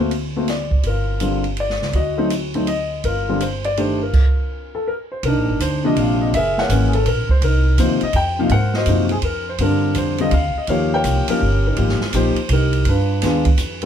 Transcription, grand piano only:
0.00 0.11 A3 medium
0.00 0.11 A#3 medium
0.00 0.11 C4 medium
0.00 0.11 F#4 medium
0.36 0.47 A3 medium
0.36 0.48 A#3 medium
0.36 0.48 C4 medium
0.36 0.48 F#4 medium
0.50 0.87 D5 medium
0.87 1.20 F4 medium
0.87 1.42 A#4 medium
1.21 1.43 D3 medium
1.21 1.43 G3 soft
1.21 1.43 C4 soft
1.21 1.43 F4 medium
1.60 1.97 D5 medium
1.95 2.51 F#4 medium
1.95 2.29 D#5 medium
2.18 2.30 F#3 medium
2.18 2.30 A3 medium
2.18 2.30 C4 medium
2.18 2.30 D#4 medium
2.55 2.67 F#3 medium
2.55 2.67 A3 medium
2.55 2.67 C4 medium
2.55 2.67 D#4 medium
2.68 3.06 D#5 medium
3.05 3.28 F4 medium
3.05 3.42 A#4 medium
3.29 3.40 D3 medium
3.29 3.40 G3 medium
3.29 3.40 C4 medium
3.29 3.40 F4 medium
3.42 3.66 C5 medium
3.65 3.77 D5 medium
3.78 3.99 D#3 medium
3.78 3.99 A3 medium
3.78 3.99 D4 medium
3.78 3.99 G4 medium
3.78 4.01 C5 medium
4.03 4.85 F4 soft
4.03 4.84 A#4 medium
4.75 4.88 A4 medium
4.88 4.93 A#4 medium
5.12 5.24 C5 medium
5.25 5.82 D4 medium
5.25 5.82 D#4 medium
5.25 5.58 A#4 medium
5.61 5.83 C5 medium
5.84 6.31 C3 medium
5.84 6.31 F3 medium
5.84 6.31 A#3 medium
5.84 6.31 D4 medium
5.84 5.97 D#5 medium
5.98 6.20 F5 medium
6.22 6.27 D#5 medium
6.35 6.87 G#4 medium
6.35 6.59 A#4 medium
6.35 6.58 E5 loud
6.59 7.05 A#4 medium
6.59 7.05 C#5 medium
6.59 6.89 F#5 medium
6.70 6.91 E3 medium
6.70 6.91 G#3 medium
6.70 6.91 A#3 medium
6.70 6.92 C#4 medium
6.88 6.94 G#4 medium
6.95 7.07 A4 medium
7.08 7.29 A#4 medium
7.31 7.42 C5 medium
7.44 7.77 D#4 medium
7.44 7.77 A#4 medium
7.79 8.00 C3 medium
7.79 8.00 F3 medium
7.79 8.00 A#3 medium
7.79 8.00 D#4 medium
7.79 8.04 C5 medium
8.03 8.16 D#5 loud
8.16 8.37 G5 loud
8.39 8.50 C3 medium
8.39 8.50 F3 medium
8.39 8.50 A#3 medium
8.39 8.50 D#4 medium
8.39 8.51 F5 medium
8.52 9.08 A#4 medium
8.52 8.75 C5 medium
8.52 8.73 F#5 loud
8.75 9.03 F#4 medium
8.75 9.21 C5 medium
8.75 9.03 D#5 loud
8.88 9.09 C3 medium
8.88 9.09 F3 medium
8.88 9.09 A#3 medium
8.88 9.09 D#4 medium
9.05 9.11 F#4 medium
9.12 9.17 G#4 medium
9.25 9.46 A#4 medium
9.49 9.61 C5 medium
9.60 10.15 D3 medium
9.60 10.15 G3 medium
9.60 10.16 C4 medium
9.60 10.18 D4 medium
9.60 10.15 F4 medium
9.60 9.95 A#4 medium
9.98 10.21 C5 medium
10.20 10.31 D3 medium
10.20 10.32 G3 medium
10.20 10.31 C4 medium
10.20 10.32 F4 medium
10.20 10.32 D#5 loud
10.34 10.55 F5 medium
10.58 10.70 D#5 medium
10.69 11.24 F3 medium
10.69 11.24 A#3 medium
10.69 11.24 D#4 medium
10.69 11.25 G4 medium
10.69 10.93 A#4 medium
10.69 10.94 C#5 medium
10.69 10.93 F5 loud
10.94 11.28 A#4 medium
10.94 11.39 C#5 medium
10.94 11.27 G5 loud
11.29 11.40 F3 medium
11.29 11.40 A#3 medium
11.29 11.75 C#4 medium
11.29 11.40 D#4 medium
11.29 11.40 F4 medium
11.29 11.66 G4 medium
11.29 11.65 A#4 loud
11.67 11.76 D#4 medium
11.67 11.76 G4 medium
11.67 12.16 A#4 medium
11.78 11.99 F3 medium
11.78 11.99 A#3 medium
11.78 11.99 D#4 medium
11.78 11.99 G4 medium
12.15 12.35 F3 medium
12.15 12.35 A#3 medium
12.15 12.35 D#4 medium
12.15 12.36 G4 medium
12.15 12.49 C5 medium
12.53 12.85 D#4 medium
12.53 12.85 G4 medium
12.53 12.89 A#4 medium
12.89 13.22 D4 medium
12.89 13.22 F4 medium
12.89 13.80 B4 medium
13.23 13.44 G#3 medium
13.23 13.44 B3 medium
13.23 13.44 D4 medium
13.23 13.44 F4 medium

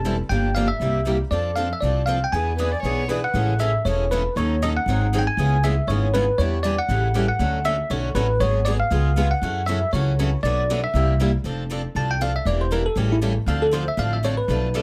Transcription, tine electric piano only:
0.00 0.16 A5 medium
0.29 0.53 G5 medium
0.55 0.68 F5 medium
0.68 1.16 E5 medium
1.31 1.55 D5 medium
1.56 1.72 F5 medium
1.73 1.82 E5 medium
1.81 2.08 D5 medium
2.06 2.24 F5 medium
2.24 2.33 G5 medium
2.32 3.19 G#5 medium
3.24 3.58 F#5 loud
3.60 3.86 E5 medium
3.85 4.11 C#5 medium
4.11 4.34 B4 medium
4.37 4.62 C#5 medium
4.63 4.69 D#5 loud
4.77 5.20 F#5 loud
5.18 5.26 G5 medium
5.27 5.64 G#5 loud
5.64 5.89 E5 medium
5.88 6.14 C#5 medium
6.14 6.39 B4 medium
6.38 6.64 C#5 medium
6.63 6.78 D5 medium
6.79 7.25 F#5 medium
7.28 7.66 F#5 medium
7.65 7.91 E5 loud
7.91 8.17 C#5 medium
8.15 8.41 B4 medium
8.41 8.67 C#5 medium
8.65 8.72 D5 medium
8.80 9.32 F5 medium
9.31 9.65 F#5 medium
9.66 9.90 E5 loud
9.93 10.40 C#5 medium
10.43 10.80 D5 medium
10.84 11.30 E5 medium
11.96 12.10 A5 medium
12.11 12.21 G5 medium
12.22 12.35 F5 medium
12.36 12.46 E5 medium
12.47 12.60 D5 medium
12.61 12.71 C5 medium
12.72 12.86 A#4 medium
12.86 12.97 A4 medium
12.98 13.11 G4 medium
13.12 13.18 E4 medium
13.48 13.61 F5 medium
13.62 13.73 A4 medium
13.73 13.87 C5 medium
13.88 13.98 E5 medium
13.99 14.12 F5 medium
14.13 14.24 E5 medium
14.24 14.38 C#5 medium
14.37 14.82 B4 medium

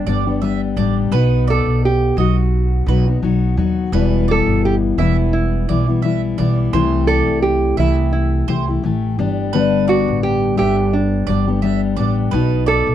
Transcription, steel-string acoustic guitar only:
0.07 0.27 G3 soft
0.07 0.26 B3 medium
0.07 0.26 D4 medium
0.07 0.25 G4 medium
0.26 0.41 G3 soft
0.26 0.42 B3 soft
0.26 0.42 D4 soft
0.26 0.42 G4 soft
0.42 0.76 G3 medium
0.42 0.78 B3 medium
0.42 0.78 D4 medium
0.42 0.78 G4 medium
0.78 1.12 G3 medium
0.78 1.12 B3 medium
0.78 1.13 D4 medium
0.78 1.14 G4 medium
1.13 2.17 B2 medium
1.13 2.18 B3 medium
1.13 2.18 D#4 medium
2.17 2.87 F#3 soft
2.17 2.87 B3 soft
2.17 2.87 D#4 medium
2.17 2.88 F#4 medium
2.88 3.07 F#3 soft
2.88 3.07 B3 medium
2.88 3.06 D#4 medium
2.88 3.05 F#4 medium
3.07 3.22 B3 soft
3.07 3.22 D#4 soft
3.07 3.22 F#4 soft
3.22 3.56 F#3 medium
3.22 3.57 B3 medium
3.22 3.57 D#4 medium
3.22 3.58 F#4 medium
3.57 3.92 F#3 medium
3.57 3.93 B3 medium
3.57 3.93 D#4 medium
3.57 3.93 F#4 medium
3.93 4.98 E2 medium
3.93 4.98 B2 medium
3.93 4.98 E3 medium
3.93 4.98 G3 medium
3.93 4.98 B3 medium
3.93 4.99 E4 medium
4.98 5.68 E3 medium
4.98 5.69 G3 medium
4.98 5.68 B3 medium
4.98 5.70 E4 medium
5.69 5.87 E3 soft
5.69 5.87 G3 soft
5.69 5.88 B3 medium
5.69 5.87 E4 medium
5.88 6.02 E3 soft
5.88 6.03 G3 soft
5.88 6.03 B3 soft
5.88 6.03 E4 soft
6.03 6.36 E3 medium
6.03 6.38 G3 medium
6.03 6.38 B3 medium
6.03 6.39 E4 medium
6.38 6.72 E3 medium
6.38 6.73 G3 medium
6.38 6.73 B3 medium
6.38 6.73 E4 medium
6.73 7.78 C3 medium
6.73 7.77 E3 medium
6.73 7.78 A3 medium
6.73 7.78 E4 medium
6.73 7.80 G4 medium
7.79 8.46 E3 medium
7.79 8.47 A3 medium
7.79 8.48 E4 medium
7.79 8.49 G4 medium
8.47 8.66 E3 medium
8.47 8.67 A3 medium
8.47 8.67 E4 medium
8.47 8.67 G4 medium
8.68 8.83 A3 soft
8.68 8.84 E4 soft
8.68 8.83 G4 medium
8.84 9.18 E3 medium
8.84 9.18 A3 soft
8.84 9.19 E4 medium
8.84 9.19 G4 medium
9.19 9.53 G3 medium
9.19 9.53 B3 medium
9.19 9.53 D4 medium
9.19 9.54 G4 medium
9.54 10.58 G2 medium
9.54 10.58 D3 medium
9.54 10.57 G3 medium
9.54 10.59 B3 medium
9.54 10.59 D4 medium
10.58 11.27 G3 medium
10.58 11.29 B3 medium
10.58 11.28 D4 medium
10.58 11.29 G4 medium
11.28 11.47 G3 medium
11.28 11.47 B3 medium
11.28 11.46 D4 medium
11.28 11.46 G4 medium
11.47 11.61 G3 soft
11.47 11.62 B3 soft
11.47 11.62 D4 soft
11.47 11.63 G4 soft
11.63 11.96 G3 medium
11.63 11.97 B3 medium
11.63 11.98 D4 medium
11.63 11.98 G4 medium
11.98 12.32 G3 medium
11.98 12.33 B3 medium
11.98 12.33 D4 medium
11.98 12.33 G4 medium
12.33 12.95 B2 medium
12.33 12.95 B3 medium
12.33 12.95 D#4 medium

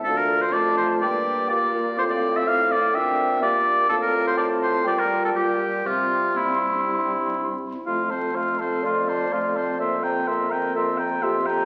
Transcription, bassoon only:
0.05 0.55 D2 medium
0.53 1.03 F2 soft
1.02 1.50 G2 medium
1.50 1.99 A#2 medium
1.98 2.95 A2 medium
2.94 3.89 A#2 medium
3.89 4.87 A2 medium
4.86 5.84 A#2 medium
5.85 7.57 C3 soft
7.87 8.29 F2 soft
8.35 8.78 F2 soft
8.83 9.26 F2 soft
9.32 9.75 F2 soft
9.80 10.22 F2 soft
10.28 10.70 F2 soft
10.75 11.18 F2 medium
11.23 11.65 F2 medium

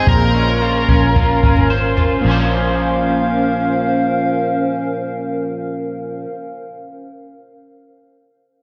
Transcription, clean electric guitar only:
0.00 0.12 G#3 medium
0.00 0.34 C4 medium
0.00 0.12 D#4 medium
0.07 2.20 A#2 medium
0.34 0.88 C#4 soft
0.62 1.15 F4 soft
0.89 1.43 C#4 soft
1.16 1.96 F4 soft
1.43 2.27 C#4 soft
1.70 2.31 C5 medium
1.97 2.29 F4 soft
2.21 6.24 A#2 medium
2.21 6.27 F3 medium
2.26 6.29 A#3 medium
2.26 6.31 C#4 medium
2.26 6.33 F4 medium
2.31 6.35 C5 medium

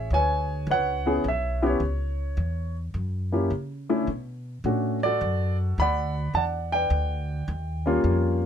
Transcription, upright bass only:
0.10 0.66 D2 medium
0.67 1.22 C#2 medium
1.24 1.79 B1 medium
1.80 2.35 C#2 medium
2.37 2.92 E2 medium
2.94 3.49 F#2 medium
3.50 4.06 C#3 medium
4.07 4.62 B2 medium
4.64 5.19 A2 medium
5.21 5.76 F#2 medium
5.78 6.33 D2 medium
6.34 6.89 E2 medium
6.90 7.46 D2 medium
7.48 8.03 D#2 medium
8.04 8.46 F2 medium

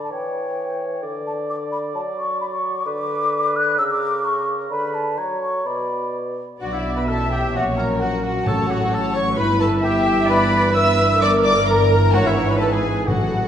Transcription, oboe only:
0.00 0.13 D5 soft
0.12 1.02 C#5 soft
1.03 2.83 D5 medium
2.86 3.80 B4 medium
3.79 4.24 A#4 medium
4.25 4.71 A#4 medium
4.72 5.19 B4 medium
5.18 5.67 C#5 medium
5.66 6.37 D5 soft
6.61 6.72 F#4 medium
6.72 6.95 E4 medium
6.96 7.10 B4 medium
7.09 7.34 A4 medium
7.32 7.54 G4 medium
7.55 7.65 F#4 medium
7.77 7.88 A#4 medium
8.01 8.23 F#4 medium
8.24 8.49 F#4 medium
8.47 8.72 A4 medium
8.71 8.95 F#4 medium
8.94 9.15 A4 medium
9.16 9.26 C#5 medium
9.39 9.49 B4 medium
9.61 9.83 A4 medium
9.84 10.29 G4 medium
10.29 10.74 B4 loud
10.75 11.20 E5 loud
11.22 11.32 D5 loud
11.44 11.54 D5 medium
11.68 12.13 A#4 loud
12.13 12.28 F#4 loud
12.27 12.49 E4 medium
12.50 12.55 B4 medium
12.61 12.71 A4 medium
12.72 13.09 G#4 medium
13.07 13.48 F#4 medium

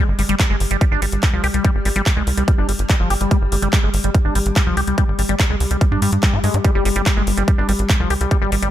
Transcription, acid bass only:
0.19 0.22 G3 medium
0.29 0.35 G3 loud
0.40 0.46 G3 medium
0.50 0.56 G#3 medium
0.71 0.77 G3 medium
0.81 0.85 G3 medium
0.92 1.01 D4 medium
1.02 1.06 G3 medium
1.23 1.29 G3 medium
1.33 1.43 F3 medium
1.44 1.47 G4 loud
1.54 1.63 G3 medium
1.65 1.71 G3 loud
1.85 1.89 G3 medium
1.96 2.02 G3 loud
2.06 2.12 G3 medium
2.17 2.23 G#3 medium
2.37 2.44 G3 medium
2.48 2.52 G3 medium
2.58 2.68 D4 medium
2.69 2.72 G3 medium
2.90 2.96 G3 medium
3.00 3.09 F3 medium
3.10 3.14 G4 loud
3.21 3.30 G3 medium
3.31 3.37 G3 loud
3.52 3.56 G3 medium
3.62 3.69 G3 loud
3.73 3.79 G3 medium
3.83 3.89 G#3 medium
4.04 4.10 G3 medium
4.15 4.18 G3 medium
4.25 4.34 D4 medium
4.35 4.39 G3 medium
4.56 4.62 G3 medium
4.67 4.76 F3 medium
4.77 4.81 G4 loud
4.88 4.97 G3 medium
4.98 5.04 G3 loud
5.19 5.22 G3 medium
5.29 5.35 G3 loud
5.40 5.46 G3 medium
5.50 5.56 G#3 medium
5.71 5.77 G3 medium
5.81 5.85 G3 medium
5.92 6.01 D4 medium
6.02 6.11 G3 medium
6.23 6.35 G3 medium
6.33 6.39 G4 medium
6.44 6.56 G#3 medium
6.54 6.58 G4 medium
6.65 6.71 G3 loud
6.75 6.84 G3 loud
6.85 6.89 G3 medium
6.96 7.02 G3 loud
7.06 7.12 G3 medium
7.17 7.23 G#3 medium
7.37 7.44 G3 medium
7.48 7.52 G3 medium
7.58 7.68 D4 medium
7.69 7.72 G3 medium
7.90 7.96 G3 medium
8.00 8.09 F3 medium
8.10 8.14 G4 loud
8.21 8.30 G3 medium
8.31 8.37 G3 loud
8.42 8.51 G3 loud
8.52 8.56 G3 medium
8.62 8.69 G3 loud

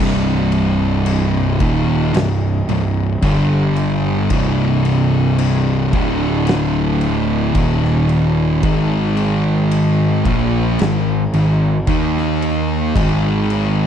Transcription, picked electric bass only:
0.00 1.56 C1 medium
1.60 2.11 D#1 loud
2.14 2.64 C1 medium
2.68 3.18 C1 medium
3.23 4.27 G1 loud
4.31 5.89 C1 medium
5.93 7.51 D1 loud
7.55 8.59 D#1 loud
8.63 10.21 G#1 medium
10.25 10.75 A#1 medium
10.80 11.30 G#1 medium
11.33 11.83 G#1 medium
11.88 12.91 D#2 loud
12.96 13.87 G#1 medium

